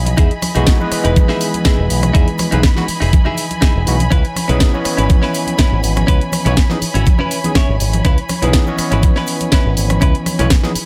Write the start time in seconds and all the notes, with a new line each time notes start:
Already playing: B1 E3 D#5 G#5 B5
0.06 muted clean electric guitar stroke, closed hi-hat, high conga, cabasa
0.17 E2 D#4 E4 G#4, kick, closed hi-hat, cabasa
0.31 closed hi-hat
0.42 muted clean electric guitar stroke, cross-stick, open hi-hat, high conga, cabasa
0.54 B1 E3 G#3 B3 D#4 E4 F#4 G#4, closed hi-hat, low conga, cabasa
0.67 kick, snare, closed hi-hat, cabasa
0.80 E3 G#3 B3 B4 D#5, muted clean electric guitar stroke, high conga, cabasa
0.92 muted picked electric bass stroke, cross-stick, open hi-hat, cabasa
1.04 E1 D#4 E4 B4, closed hi-hat, cabasa
1.16 kick, closed hi-hat, high conga, cabasa
1.28 D#4 E4 G#4, snare
1.41 open hi-hat, cabasa
1.54 closed hi-hat, high conga, cabasa
1.65 D#4 E4 G#4, kick, snare, closed hi-hat, cabasa
1.79 E1
1.90 B1, open hi-hat, cabasa
2.02 muted clean electric guitar stroke, cross-stick, closed hi-hat, high conga, cabasa
2.14 E2 D#4 E4 G#4, kick, closed hi-hat, cabasa
2.28 closed hi-hat
2.38 muted clean electric guitar stroke, cross-stick, open hi-hat, high conga, cabasa
2.51 B1 E3 G#3 B3 D#4 E4 G#4 B4, closed hi-hat, low conga, cabasa
2.63 kick, snare, closed hi-hat, cabasa
2.76 E3 G#3 B3 D#4 F#4, muted clean electric guitar stroke, snare, high conga, cabasa
2.88 muted picked electric bass stroke, open hi-hat, cabasa
3.00 E1 D#4 E4 G#4, open hi-hat, cabasa
3.13 kick, closed hi-hat, high conga, cabasa
3.25 D#4 E4 G#4, low conga
3.37 open hi-hat, cabasa
3.51 closed hi-hat, high conga, cabasa
3.61 D#4 E4 G#4, kick, snare, closed hi-hat, cabasa
3.76 E1
3.87 B1 E3 G#3 B3 D#4 F#4, open hi-hat, cabasa
3.99 muted clean electric guitar stroke, closed hi-hat, high conga, cabasa
4.10 C#2 C#4 E4 B4 C#5, kick, closed hi-hat, cabasa
4.25 closed hi-hat
4.35 muted clean electric guitar stroke, cross-stick, open hi-hat, high conga, cabasa
4.48 B1 E3 B3 C#4 D#4 E4 G#4 B4, closed hi-hat, low conga, cabasa
4.60 kick, snare, closed hi-hat, cabasa
4.72 E3 B3 C#4 C#5 D#5, muted clean electric guitar stroke, high conga, cabasa
4.85 muted picked electric bass stroke, cross-stick, open hi-hat, cabasa
4.97 G#1 C#4 E4 B4, closed hi-hat, cabasa
5.10 kick, closed hi-hat, high conga, cabasa
5.22 C#4 E4 B4, snare
5.34 open hi-hat, cabasa
5.47 closed hi-hat, high conga, cabasa
5.58 C#4 E4 B4, kick, snare, closed hi-hat, cabasa
5.72 G#1
5.83 G#1, open hi-hat, cabasa
5.96 muted clean electric guitar stroke, cross-stick, closed hi-hat, high conga, cabasa
6.07 C#2 C#4 E4 B4, kick, closed hi-hat, cabasa
6.21 closed hi-hat
6.32 muted clean electric guitar stroke, cross-stick, open hi-hat, high conga, cabasa
6.45 B1 E3 B3 C#4 D#4 E4 B4 C#5, closed hi-hat, low conga, cabasa
6.56 kick, snare, closed hi-hat, cabasa
6.70 E3 B3 C#4 D#4 G#4, muted clean electric guitar stroke, snare, high conga, cabasa
6.82 muted picked electric bass stroke, open hi-hat, cabasa
6.94 G#1 C#4 E4 F#4, closed hi-hat, cabasa
7.06 kick, closed hi-hat, high conga, cabasa
7.19 C#4 E4 B4, low conga
7.31 open hi-hat, cabasa
7.44 E3 B3 C#4 D#4 G#4, closed hi-hat, high conga, cabasa
7.55 C#4 E4 C#5, kick, snare, closed hi-hat, cabasa
7.69 G#1
7.80 G#1, open hi-hat, cabasa
7.93 muted clean electric guitar stroke, closed hi-hat, high conga, cabasa
8.05 C#2 C#4 E4 B4, kick, closed hi-hat, cabasa
8.18 closed hi-hat
8.29 muted clean electric guitar stroke, cross-stick, open hi-hat, high conga, cabasa
8.42 B1 E3 B3 C#4 D#4 E4 G#4 B4, closed hi-hat, low conga, cabasa
8.53 kick, snare, closed hi-hat, cabasa
8.66 E3 B3 C#4 C#5 D#5, muted clean electric guitar stroke, high conga, cabasa
8.78 muted picked electric bass stroke, cross-stick, open hi-hat, cabasa
8.91 G#1 C#4 E4 B4, closed hi-hat, cabasa
9.03 kick, closed hi-hat, high conga, cabasa
9.16 C#4 E4 B4, snare
9.27 open hi-hat, cabasa
9.40 closed hi-hat, high conga, cabasa
9.52 C#4 E4 B4, kick, snare, closed hi-hat, cabasa
9.66 G#1
9.77 G#1, open hi-hat, cabasa
9.89 muted clean electric guitar stroke, cross-stick, closed hi-hat, high conga, cabasa
10.01 C#2 C#4 E4 B4, kick, closed hi-hat, cabasa
10.15 closed hi-hat
10.26 muted clean electric guitar stroke, cross-stick, open hi-hat, high conga, cabasa
10.39 B1 E3 B3 C#4 D#4 E4 B4 C#5, closed hi-hat, low conga, cabasa
10.50 kick, snare, closed hi-hat, cabasa
10.64 E3 B3 C#4 D#4 G#4, muted clean electric guitar stroke, snare, high conga, cabasa
10.75 muted picked electric bass stroke, open hi-hat, cabasa